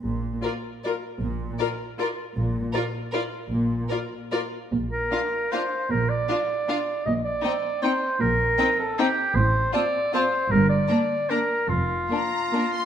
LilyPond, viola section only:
\new Staff \with { instrumentName = "Viola section" } { \time 3/4 \key bes \major \tempo 4 = 153 r4 f'4 f'4 | r4 f'4 f'4 | r4 f'4 f'4 | r4 f'4 f'4 |
r4 d'4 d'4 | r4 d'4 d'4 | r4 c'4 c'4 | r4 c'4 c'4 |
r4 c'4 c'4 | r4 bes4 bes4 | r4 bes4 bes4 | }